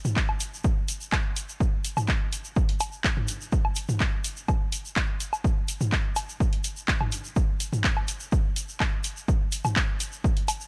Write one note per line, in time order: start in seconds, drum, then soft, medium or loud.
0.05 mid tom medium
0.05 shaker medium
0.16 kick loud
0.16 clap loud
0.16 shaker soft
0.29 low woodblock medium
0.40 open hi-hat loud
0.40 shaker loud
0.54 shaker medium
0.64 kick loud
0.64 shaker soft
0.88 open hi-hat loud
0.88 shaker loud
1.01 shaker medium
1.12 kick loud
1.12 clap loud
1.12 low woodblock medium
1.12 shaker soft
1.36 open hi-hat loud
1.36 shaker medium
1.49 shaker medium
1.60 kick loud
1.60 shaker soft
1.85 open hi-hat loud
1.85 shaker medium
1.97 mid tom loud
1.97 low woodblock medium
1.97 shaker medium
2.08 kick loud
2.08 clap loud
2.08 shaker soft
2.33 open hi-hat loud
2.33 shaker medium
2.44 shaker soft
2.56 kick loud
2.56 shaker soft
2.69 open hi-hat medium
2.80 open hi-hat loud
2.80 low woodblock medium
2.80 shaker loud
2.92 shaker soft
3.04 kick loud
3.04 clap loud
3.04 shaker soft
3.17 mid tom loud
3.28 open hi-hat loud
3.28 shaker medium
3.41 shaker medium
3.52 kick loud
3.52 shaker soft
3.65 low woodblock medium
3.75 open hi-hat loud
3.75 shaker medium
3.89 mid tom loud
3.89 shaker soft
4.00 kick loud
4.00 clap loud
4.00 shaker soft
4.24 open hi-hat loud
4.24 shaker medium
4.37 shaker soft
4.48 kick loud
4.48 low woodblock medium
4.48 shaker soft
4.72 open hi-hat loud
4.72 shaker medium
4.85 shaker medium
4.96 kick loud
4.96 clap loud
4.96 shaker soft
5.20 open hi-hat loud
5.20 shaker medium
5.33 low woodblock medium
5.33 shaker soft
5.44 kick loud
5.44 shaker soft
5.68 open hi-hat loud
5.68 shaker loud
5.81 mid tom loud
5.81 shaker medium
5.92 kick loud
5.92 clap loud
5.92 shaker soft
6.16 open hi-hat loud
6.16 low woodblock medium
6.16 shaker medium
6.29 shaker medium
6.40 kick loud
6.40 shaker soft
6.53 open hi-hat medium
6.64 open hi-hat loud
6.64 shaker medium
6.77 shaker medium
6.88 kick loud
6.88 clap loud
6.88 shaker soft
7.01 mid tom loud
7.01 low woodblock medium
7.12 open hi-hat loud
7.12 shaker medium
7.24 shaker soft
7.36 kick loud
7.36 shaker soft
7.60 open hi-hat loud
7.60 shaker medium
7.73 mid tom medium
7.73 shaker medium
7.84 kick loud
7.84 clap loud
7.84 shaker soft
7.97 low woodblock medium
8.08 open hi-hat loud
8.08 shaker medium
8.20 shaker medium
8.32 kick loud
8.32 shaker soft
8.56 open hi-hat loud
8.56 shaker medium
8.69 shaker medium
8.80 kick loud
8.80 clap loud
8.80 low woodblock medium
8.80 shaker soft
9.04 open hi-hat loud
9.04 shaker medium
9.17 shaker medium
9.28 kick loud
9.28 shaker soft
9.52 open hi-hat loud
9.52 shaker loud
9.65 mid tom medium
9.65 low woodblock medium
9.65 shaker soft
9.76 kick loud
9.76 clap loud
9.76 shaker soft
10.00 open hi-hat loud
10.00 shaker medium
10.12 shaker medium
10.24 kick loud
10.24 shaker soft
10.37 open hi-hat medium
10.48 open hi-hat loud
10.48 low woodblock medium
10.48 shaker loud
10.61 shaker medium